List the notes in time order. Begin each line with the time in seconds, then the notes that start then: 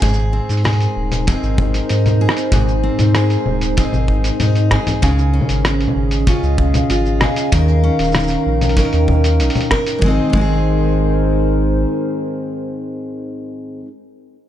0.02 G#1 G#2 G#3 G#4, kick, open hi-hat, shaker
0.08 shaker
0.13 shaker
0.19 shaker
0.33 C4
0.39 D#4 A#4
0.49 G#2, open hi-hat, shaker
0.57 open hi-hat
0.64 G#4, cross-stick, open hi-hat, low conga
0.73 open hi-hat
0.80 open hi-hat, shaker
0.96 D#1
1.12 open hi-hat, low conga, shaker
1.27 C4 D#4 G#4, kick, open hi-hat, shaker
1.31 C5
1.43 G#1, shaker
1.58 kick, low conga
1.74 open hi-hat, shaker
1.89 G#2 D#4, open hi-hat, shaker
2.06 open hi-hat, low conga, shaker
2.21 G#4
2.29 cross-stick
2.37 open hi-hat, shaker
2.52 G#1 G#2 G#4, kick, open hi-hat, low conga, shaker
2.68 shaker
2.83 C4
2.99 G#2, open hi-hat, low conga, shaker
3.15 G#4, cross-stick, open hi-hat, shaker
3.30 open hi-hat, shaker
3.46 D#1, low conga
3.61 open hi-hat, shaker
3.77 C4 D#4 G#4, kick, open hi-hat, shaker
3.93 G#1, low conga, shaker
4.08 kick
4.24 open hi-hat, shaker
4.40 G#2 D#4, open hi-hat, low conga, shaker
4.55 open hi-hat, shaker
4.71 G#4, kick, cross-stick
4.87 open hi-hat, low conga, shaker
5.02 C#2 C#3 C#4 G#4, kick, open hi-hat, shaker
5.18 shaker
5.33 C#4
5.41 G#4, low conga
5.49 G#1, open hi-hat, shaker
5.65 G#4, cross-stick, open hi-hat, shaker
5.76 D#5
5.81 open hi-hat
5.88 low conga
5.96 G#1
6.11 open hi-hat, shaker
6.15 F5
6.27 C#4 F4 G#4, kick, open hi-hat, low conga, shaker
6.43 C#2, shaker
6.58 kick
6.74 open hi-hat, low conga, shaker
6.90 G#1 F4, open hi-hat, shaker
7.06 shaker
7.21 G#4, cross-stick, open hi-hat, low conga
7.36 open hi-hat, shaker
7.52 D#2 D#3 D#4 A#4, kick, open hi-hat, shaker
7.68 shaker
7.84 C#4
7.94 A#4
7.99 D#1, open hi-hat, shaker
8.03 shaker
8.07 shaker
8.12 A#4, cross-stick, open hi-hat, low conga, shaker
8.15 shaker
8.19 shaker
8.23 G5, shaker
8.27 open hi-hat, shaker
8.31 shaker
8.46 A#1
8.61 open hi-hat, low conga, shaker
8.69 open hi-hat
8.77 C#4 D#4 A#4, kick, open hi-hat, shaker
8.85 open hi-hat
8.93 D#2, open hi-hat, shaker
9.08 kick, low conga
9.24 open hi-hat, shaker
9.40 A#1 D#4, open hi-hat, shaker
9.50 open hi-hat
9.55 open hi-hat, low conga, shaker
9.61 open hi-hat
9.71 A#4, kick, cross-stick
9.87 open hi-hat, shaker
9.99 G#1 G#2 D#3 G#3, kick
10.04 G#3 C4
10.08 D#4 G#4
10.21 A#4
10.29 G#2 D#3 C5
10.33 G#1 G#3 C4, kick
10.39 D#4 G#4